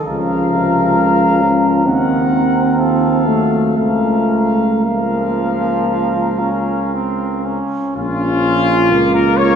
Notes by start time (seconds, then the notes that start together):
0.07 C#2 C#3 F3 A#4 F5
0.51 C3
0.97 C#3
1.42 F3 C#4
1.85 D#2 D#3 C4 A#4 F#5
2.79 F3 A4 F5
3.26 F#3 A3
3.77 C#2 F3 A3 A#4 F5
4.82 F3 A#3 A#4 F5
6.40 C#4
6.94 C4
7.46 C#4
7.97 A#1 C#4 F4
8.91 C#2 A#3
9.15 A#4
9.38 C#5